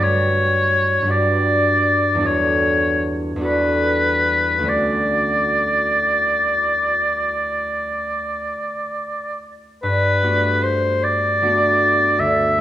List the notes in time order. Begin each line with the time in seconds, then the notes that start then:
Already playing: G2 G3 D4
0.00 F#4 B4 C#5
1.02 G2 G3 D4
1.07 F#4 B4 D5
2.15 E2 G3 D4
2.20 F#4 A4
2.26 C#5
3.36 E2 G3 D4
3.41 F#4 A4 B4
4.59 D2 A3 C#4
4.64 E4 F#4
4.68 D5
9.83 G2 B4
10.23 A3 B3 D4 F#4
10.63 C5
11.03 D5
11.42 A3 B3 D4 F#4
12.19 D2 E5